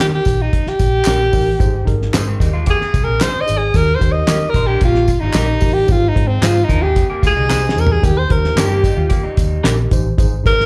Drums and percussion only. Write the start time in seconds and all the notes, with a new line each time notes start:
0.00 snare, closed hi-hat
0.25 kick, closed hi-hat, tambourine
0.53 kick, closed hi-hat
0.66 snare
0.79 kick, closed hi-hat, tambourine
1.05 snare, clap, closed hi-hat, tambourine
1.33 kick, open hi-hat, tambourine
1.60 kick, closed hi-hat, tambourine
1.87 kick, closed hi-hat
2.02 snare
2.14 snare, clap, closed hi-hat, tambourine
2.40 kick, closed hi-hat, tambourine
2.66 kick, closed hi-hat, tambourine
2.81 snare
2.94 kick, closed hi-hat, tambourine
3.21 snare, clap, closed hi-hat, tambourine
3.48 closed hi-hat, tambourine
3.74 kick, closed hi-hat, tambourine
4.01 kick, closed hi-hat, tambourine
4.28 snare, clap, closed hi-hat, tambourine
4.54 kick, closed hi-hat, tambourine
4.81 kick, closed hi-hat, tambourine
4.95 snare
5.08 kick, closed hi-hat, tambourine
5.33 snare, clap, closed hi-hat, tambourine
5.61 kick, open hi-hat, tambourine
5.88 kick, closed hi-hat, tambourine
6.16 kick, closed hi-hat
6.43 snare, clap, closed hi-hat, tambourine
6.69 kick, closed hi-hat, tambourine
6.96 kick, closed hi-hat, tambourine
7.23 kick, closed hi-hat, tambourine
7.50 snare, clap, tambourine
7.69 snare
7.78 tambourine
7.87 floor tom
8.03 kick, closed hi-hat, tambourine
8.30 kick, closed hi-hat
8.44 snare
8.58 snare, clap, closed hi-hat, tambourine
8.84 kick, closed hi-hat, tambourine
9.10 kick, closed hi-hat, tambourine
9.37 kick, closed hi-hat, tambourine
9.64 snare, clap, closed hi-hat, tambourine
9.91 kick, closed hi-hat, tambourine
10.18 kick, closed hi-hat, tambourine
10.46 kick, closed hi-hat, tambourine
10.60 snare